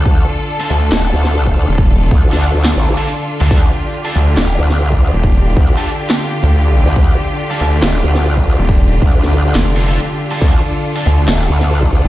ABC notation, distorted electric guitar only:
X:1
M:4/4
L:1/16
Q:"Swing 16ths" 1/4=139
K:Dphr
V:1 name="Distorted electric guitar"
z4 z [DFA] z8 z2 | z4 z [DFA] z4 z [DFA] z3 [DFA]- | [DFA] z4 [DFA] z8 z2 | z4 z [DFA] z8 z2 |
z4 z [DFA] z8 z2 | z8 z2 [DFA] [DFA] z3 [DFA]- | [DFA] z4 [DFA] z8 z2 |]